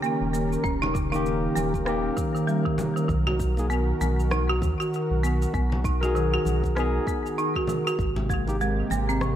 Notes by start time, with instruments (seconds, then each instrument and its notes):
Already playing: analog synth pad D#3 C#4 G4 A#4
0.02 marimba A#3, shaker
0.21 sub bass D#1
0.33 marimba A#3, shaker
0.53 shaker
0.64 sub bass D#1, marimba C#4, kick, shaker
0.82 marimba D#4, muted conga, low conga
0.94 marimba C#3, kick, shaker
1.12 tine electric piano A#3 D#4 G4, marimba D#4, muted conga, shaker
1.26 shaker
1.56 sub bass D#1, marimba A#3, high conga, shaker
1.74 kick, muted conga, shaker
1.85 tine electric piano A#3 D#4, marimba A#3, cross-stick, shaker
1.89 tine electric piano G4
2.17 marimba D#3, kick, shaker
2.35 marimba D#3, shaker
2.47 marimba G3, shaker
2.65 marimba D#3, kick
2.78 high conga, low conga, shaker
2.96 marimba D#3, shaker
3.08 sub bass B1, marimba D#3, analog synth pad F#4, kick, shaker
3.27 marimba F#4, muted conga, low conga
3.40 kick, shaker
3.57 tine electric piano A#3 D#4 G#4, muted conga, shaker
3.70 marimba B3, shaker
4.01 sub bass B1, marimba B3, high conga, shaker
4.20 shaker
4.31 marimba D#4, cross-stick, high conga, shaker
4.49 marimba F#4
4.62 sub bass D#2, marimba D#3, kick, muted conga, high conga, shaker
4.80 marimba F#4, shaker
4.94 shaker
5.11 sub bass B1
5.23 marimba B3, shaker
5.42 shaker
5.54 sub bass B1, marimba B3, kick, shaker
5.72 muted conga, low conga
5.84 marimba D#4, kick, shaker
6.01 tine electric piano D#4 G#4 A#4, marimba F#4, muted conga, shaker
6.15 marimba D#3, shaker
6.34 marimba F#4
6.45 sub bass B1, high conga, shaker
6.64 kick, muted conga, shaker
6.75 marimba B3, tine electric piano D#4 A#4, cross-stick, shaker
6.79 tine electric piano G#4
7.07 marimba B3, kick, shaker
7.26 shaker
7.38 marimba D#4, shaker
7.56 marimba F#4, kick
7.67 marimba D#3, high conga, low conga, shaker
7.87 marimba F#4, shaker
7.98 sub bass G#1, analog synth pad C3 G#3 A#3 G4, kick, shaker
8.16 muted conga, low conga
8.29 marimba G#3, kick, shaker
8.47 tine electric piano A#3 D#4 G4, muted conga, shaker
8.61 marimba G#3, shaker
8.90 sub bass G#1, marimba A#3, high conga, shaker
9.09 marimba C4, shaker
9.21 marimba C3, cross-stick, high conga, shaker